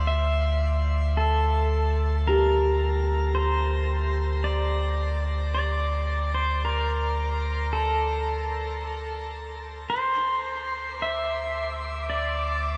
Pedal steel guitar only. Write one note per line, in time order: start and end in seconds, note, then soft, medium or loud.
0.00 0.14 C5 medium
0.07 0.86 E5 medium
1.17 2.27 A4 medium
2.27 3.34 A#4 medium
3.35 4.48 C5 medium
4.44 5.23 D5 medium
5.55 6.34 D5 medium
6.35 6.64 C5 medium
6.65 7.72 A#4 medium
7.73 9.33 A4 medium
9.90 10.96 C5 medium
11.02 12.09 E5 medium
12.10 12.77 D5 medium